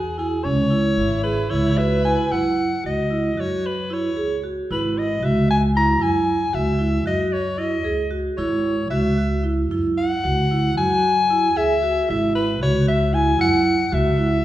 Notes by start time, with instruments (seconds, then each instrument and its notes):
Already playing: upright bass E2, soprano saxophone G#4
0.18 vibraphone E4, soprano saxophone G#4
0.44 upright bass C#2, vibraphone C#4, soprano saxophone C#5
0.70 vibraphone E4
0.97 upright bass G#1, viola E4
1.23 vibraphone G#4, soprano saxophone B4
1.50 upright bass C#2, vibraphone E4, viola E4, soprano saxophone C#5
1.77 vibraphone F#4, viola B4, soprano saxophone E5
2.04 vibraphone E4, soprano saxophone G#5
2.32 upright bass F#2, vibraphone E4, soprano saxophone F#5
2.84 upright bass C#2, vibraphone F#4, soprano saxophone D#5
3.11 vibraphone E4
3.37 upright bass F#2, vibraphone F#4, soprano saxophone C#5
3.66 soprano saxophone B4
3.90 vibraphone E4, soprano saxophone C#5
4.17 upright bass C#2, vibraphone G#4
4.44 vibraphone F#4
4.70 upright bass G#1, vibraphone E4, soprano saxophone B4
4.98 soprano saxophone D#5
5.23 upright bass C#2, vibraphone F#4, soprano saxophone E5
5.49 vibraphone F#4, soprano saxophone G#5
5.75 vibraphone E4, soprano saxophone A#5
6.01 upright bass F#2, vibraphone E4, soprano saxophone G#5
6.53 upright bass C#2, vibraphone F#4, soprano saxophone E5
6.79 vibraphone E4
7.06 upright bass F#2, vibraphone F#4, soprano saxophone D#5
7.33 soprano saxophone C#5
7.58 vibraphone E4, soprano saxophone D#5
7.84 upright bass C#2, vibraphone G#4
8.11 vibraphone F#4
8.38 upright bass G#1, vibraphone E4, soprano saxophone C#5
8.90 upright bass C#2, vibraphone F#4, soprano saxophone E5
9.18 vibraphone F#4
9.44 vibraphone E4
9.71 upright bass F#2, vibraphone E4
9.98 soprano saxophone F#5
10.24 upright bass C#2, vibraphone F#4
10.51 vibraphone E4
10.77 upright bass F#2, vibraphone F#4, soprano saxophone G#5
11.30 vibraphone E4
11.56 upright bass C#2, vibraphone G#4, soprano saxophone E5
11.83 vibraphone F#4
12.09 upright bass G#1, vibraphone E4, soprano saxophone E5
12.35 soprano saxophone B4
12.61 upright bass C#2, vibraphone F#4, soprano saxophone C#5
12.87 vibraphone F#4, soprano saxophone E5
13.13 vibraphone E4, soprano saxophone G#5
13.39 upright bass F#2, vibraphone E4, soprano saxophone F#5
13.92 upright bass C#2, vibraphone F#4, soprano saxophone E5
14.18 vibraphone E4